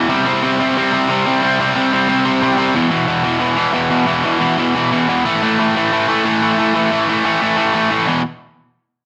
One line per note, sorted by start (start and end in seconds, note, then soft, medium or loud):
0.00 2.74 E2 medium
0.08 0.25 C3 loud
0.08 0.25 G3 loud
0.08 0.25 C4 loud
0.26 0.42 C3 medium
0.26 0.43 G3 medium
0.26 0.43 C4 loud
0.43 0.59 C3 loud
0.43 0.60 G3 loud
0.43 0.59 C4 loud
0.60 0.76 C3 medium
0.60 0.77 G3 medium
0.60 0.77 C4 loud
0.77 0.93 C3 medium
0.77 0.93 G3 loud
0.77 0.92 C4 loud
0.93 1.08 C3 medium
0.93 1.10 G3 medium
0.93 1.09 C4 loud
1.09 1.26 C3 loud
1.09 1.26 G3 loud
1.09 1.25 C4 loud
1.26 1.42 C3 medium
1.26 1.43 G3 medium
1.26 1.43 C4 loud
1.43 1.60 C3 medium
1.43 1.60 G3 medium
1.43 1.59 C4 loud
1.60 1.74 C3 medium
1.60 1.75 G3 medium
1.60 1.75 C4 loud
1.75 1.93 C3 loud
1.75 1.92 G3 loud
1.75 1.92 C4 loud
1.93 2.07 C3 medium
1.93 2.08 G3 loud
1.93 2.08 C4 loud
2.08 2.24 C3 loud
2.08 2.24 G3 loud
2.08 2.24 C4 loud
2.25 2.40 C3 medium
2.25 2.41 G3 medium
2.25 2.42 C4 loud
2.42 2.57 C3 loud
2.42 2.57 G3 loud
2.42 2.56 C4 loud
2.57 2.74 C3 medium
2.57 2.74 G3 medium
2.57 2.73 C4 loud
2.75 2.91 E2 medium
2.75 2.90 B2 medium
2.75 2.90 E3 loud
2.90 3.07 E2 medium
2.90 3.06 B2 medium
2.90 3.07 E3 medium
3.07 3.24 E2 medium
3.07 3.23 B2 medium
3.07 3.23 E3 medium
3.23 3.38 E2 medium
3.23 3.39 B2 medium
3.23 3.40 E3 loud
3.39 3.56 E2 medium
3.39 3.55 B2 medium
3.39 3.56 E3 medium
3.56 3.72 E2 medium
3.56 3.72 B2 loud
3.56 3.74 E3 loud
3.73 3.90 E2 medium
3.73 3.89 B2 medium
3.73 3.90 E3 loud
3.90 4.05 E2 medium
3.90 4.06 B2 medium
3.90 4.07 E3 medium
4.06 4.24 E2 medium
4.06 4.24 B2 medium
4.06 4.24 E3 medium
4.24 4.39 E2 medium
4.24 4.39 B2 medium
4.24 4.41 E3 medium
4.40 4.57 E2 medium
4.40 4.58 B2 medium
4.40 4.57 E3 medium
4.58 4.74 E2 medium
4.58 4.74 B2 medium
4.58 4.76 E3 medium
4.75 4.91 E2 medium
4.75 4.91 B2 medium
4.75 4.91 E3 medium
4.92 5.07 E2 medium
4.92 5.08 B2 medium
4.92 5.09 E3 loud
5.09 5.24 E2 medium
5.09 5.24 B2 loud
5.09 5.25 E3 medium
5.25 5.43 A2 medium
5.25 5.43 E3 medium
5.25 5.43 A3 loud
5.43 5.59 A2 medium
5.43 5.59 E3 medium
5.43 5.60 A3 loud
5.59 5.77 A2 medium
5.59 5.76 E3 medium
5.59 5.76 A3 medium
5.76 5.92 A2 medium
5.76 5.92 E3 medium
5.76 5.93 A3 medium
5.93 6.08 A2 medium
5.93 6.08 E3 loud
5.93 6.07 A3 loud
6.08 6.24 A2 medium
6.08 6.25 E3 medium
6.08 6.25 A3 loud
6.25 6.42 A2 medium
6.25 6.42 E3 loud
6.25 6.41 A3 loud
6.42 6.57 A2 medium
6.42 6.58 E3 medium
6.42 6.58 A3 loud
6.58 6.75 A2 medium
6.58 6.74 E3 medium
6.58 6.73 A3 medium
6.75 6.90 A2 medium
6.75 6.91 E3 medium
6.75 6.91 A3 medium
6.91 7.09 A2 medium
6.91 7.08 E3 medium
6.91 7.08 A3 medium
7.09 7.23 A2 medium
7.09 7.24 E3 medium
7.09 7.25 A3 medium
7.24 7.41 A2 medium
7.24 7.41 E3 medium
7.24 7.40 A3 medium
7.41 7.55 A2 medium
7.41 7.56 E3 medium
7.41 7.57 A3 medium
7.56 7.73 A2 medium
7.56 7.73 E3 medium
7.56 7.72 A3 medium
7.73 7.88 A2 medium
7.73 7.89 E3 medium
7.73 7.90 A3 medium
7.90 8.06 A2 medium
7.90 8.06 E3 medium
7.90 8.06 A3 medium
8.06 8.20 E2 medium
8.06 8.20 B2 medium
8.06 8.21 E3 medium